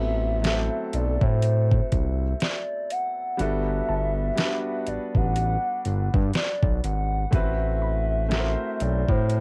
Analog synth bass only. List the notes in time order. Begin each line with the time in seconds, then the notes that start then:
Already playing: A1
0.94 B1
1.22 A2
1.93 C2
3.40 G1
3.89 G1
4.87 A1
5.15 A1
5.86 G1
6.14 G2
6.63 B1
6.84 G#1
7.33 A1
8.81 B1
9.09 A2